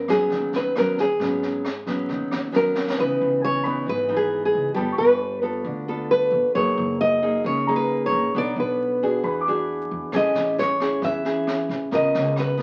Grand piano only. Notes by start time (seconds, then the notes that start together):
Already playing: E5 A5 B5
3.41 G#5
3.64 B5
4.76 A5
4.92 C#6
7.67 A#5
9.24 B5
9.41 D6
10.14 G#5